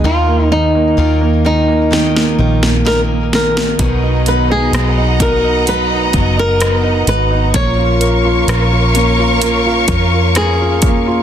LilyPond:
<<
  \new Staff \with { instrumentName = "String section" } { \time 4/4 \key dis \minor \tempo 4 = 64 r1 | <dis'' fis'' ais''>1 | <ais' cis'' eis'' cis'''>1 | }
  \new Staff \with { instrumentName = "Nylon-string guitar" } { \time 4/4 \key dis \minor eis'8 dis'4 dis'4. ais'8 ais'8~ | ais'8 b'16 gis'8. ais'8 b'8. ais'8. b'8 | cis''2. gis'4 | }
  \new Staff \with { instrumentName = "Steel-string acoustic guitar" } { \time 4/4 \key dis \minor <dis ais dis' eis' ais'>4 <ais dis' eis' ais'>8 <dis' eis' ais'>8 <ais dis' eis' ais'>8 <dis' eis' ais'>8 <ais dis' eis' ais'>4 | <b, dis fis b dis' ais'>4 <fis b dis' ais'>8 <fis b dis' ais'>8 <fis b dis'>8 <fis b dis' ais'>8 <fis b dis'>4 | <ais, eis ais cis' eis' ais'>4 <ais cis' eis' ais'>8 <ais cis' eis' ais'>8 <ais cis' eis' ais'>8 <ais cis' eis' ais'>8 <ais cis' eis' ais'>4 | }
  \new Staff \with { instrumentName = "Grand piano" } { \time 4/4 \key dis \minor dis16 ais16 dis16 ais16 dis16 ais16 dis16 ais16 dis16 ais16 dis16 ais16 dis16 ais16 dis16 ais16 | b,16 dis'16 fis16 dis'16 b16 dis'16 fis'16 dis'16 fis16 dis'16 fis16 dis'16 b16 dis'16 fis'16 dis'16 | ais16 eis'16 ais'16 eis'16 ais'16 eis'16 ais16 eis'16 ais16 eis'16 ais'16 eis'16 ais'16 eis'16 ais16 eis'16 | }
  \new Staff \with { instrumentName = "Fingered electric bass" } { \clef bass \time 4/4 \key dis \minor dis,4 dis,4. ais,,4. | b,,4 b,,4. fis,,4 gis,,8 | ais,,4 ais,,4. eis,4. | }
  \new DrumStaff \with { instrumentName = "Drums" } \drummode { \time 4/4 r4 r4 sn16 sn8 sn16 sn8 sn16 sn16 | <hh bd>8 hh8 <hh ss>8 <hh bd>8 hh8 <hh bd>8 <hh ss>8 hh8 | <hh bd>8 hh8 <hh ss>8 hh8 hh8 <hh bd>8 <hh ss>8 <hh bd>8 | }
>>